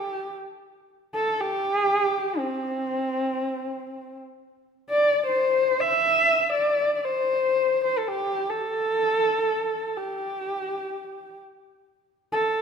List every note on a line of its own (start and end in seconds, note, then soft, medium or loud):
0.00 0.34 G4 medium
1.15 1.42 A4 medium
1.40 2.39 G4 medium
2.38 4.17 C4 medium
4.90 5.24 D5 medium
5.27 5.83 C5 medium
5.81 6.52 E5 medium
6.53 6.95 D5 medium
6.95 7.07 D5 medium
7.05 7.82 C5 medium
7.84 8.00 C5 medium
7.98 8.09 A4 medium
8.08 8.52 G4 medium
8.50 9.98 A4 medium
9.97 11.38 G4 medium
12.32 12.62 A4 medium